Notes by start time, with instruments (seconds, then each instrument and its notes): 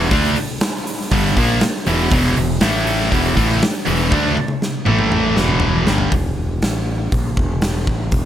Already playing: distorted electric guitar E2 B2 E3
0.10 fingered electric bass D2, distorted electric guitar D3 A3 D4, kick, open hi-hat
0.36 open hi-hat
0.61 snare, open hi-hat
0.87 open hi-hat
1.00 snare
1.11 fingered electric bass G1, distorted electric guitar G2 D3 G3, kick, open hi-hat
1.36 fingered electric bass A#1, distorted electric guitar A#2 F3 A#3, kick, open hi-hat
1.61 muted distorted electric guitar stroke, muted fingered electric bass stroke, snare, open hi-hat
1.86 fingered electric bass E1, distorted electric guitar E2 B2 E3, open hi-hat
2.10 fingered electric bass E1, distorted electric guitar E2 B2 E3, kick, open hi-hat
2.37 fingered electric bass E1, distorted electric guitar E2 B2, open hi-hat
2.61 fingered electric bass A1, distorted electric guitar A2 E3 A3, snare, open hi-hat
2.87 open hi-hat
3.00 snare
3.11 fingered electric bass E1, distorted electric guitar E2 B2 E3, kick, open hi-hat
3.36 fingered electric bass A1, distorted electric guitar A2 E3 A3, kick, open hi-hat
3.61 muted distorted electric guitar stroke, muted fingered electric bass stroke, snare, open hi-hat
3.86 fingered electric bass E1, distorted electric guitar E2 B2 E3, open hi-hat
4.10 fingered electric bass D2, distorted electric guitar D3 A3 D4, kick
4.37 high tom
4.48 high tom
4.62 snare
4.85 fingered electric bass A1, distorted electric guitar A2 E3 A3, mid tom
4.99 mid tom
5.12 mid tom
5.36 fingered electric bass E1, distorted electric guitar E2 B2 E3, snare
5.48 mid tom
5.60 floor tom
5.85 fingered electric bass G1, distorted electric guitar G2 D3 G3, snare
5.98 floor tom
6.12 fingered electric bass E1, kick, open hi-hat
6.37 fingered electric bass E1
6.62 fingered electric bass A1, snare, open hi-hat
7.12 fingered electric bass A#1, kick, open hi-hat
7.37 fingered electric bass E1, kick
7.62 snare, open hi-hat
7.87 fingered electric bass A1, kick
8.12 fingered electric bass E1, kick, open hi-hat